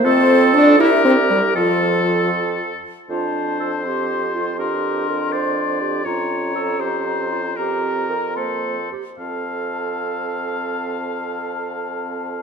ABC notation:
X:1
M:6/8
L:1/16
Q:3/8=78
K:F
V:1 name="Flute"
c4 d2 e2 c2 G2 | F6 z6 | a6 c'6 | c'12 |
b12 | b6 c'4 z2 | a12- | a12 |]
V:2 name="Oboe"
A6 B6 | A8- A2 z2 | c12 | B6 d6 |
_d6 c6 | B6 A4 z2 | f12- | f12 |]
V:3 name="Clarinet"
A6 G6 | A8- A z3 | F4 A2 G4 F2 | G4 B2 c4 G2 |
F4 A2 G4 F2 | G4 B2 c4 G2 | A12- | A12 |]
V:4 name="French horn"
C4 D2 E2 C2 G,2 | F,6 z6 | D6 C6 | D12 |
_D12 | C6 B,3 z3 | C12- | C12 |]
V:5 name="Bassoon" clef=bass
F,,6 C,,6 | F,,8- F,,2 z2 | F,,12- | F,,12 |
F,,12- | F,,8- F,,2 z2 | F,,12- | F,,12 |]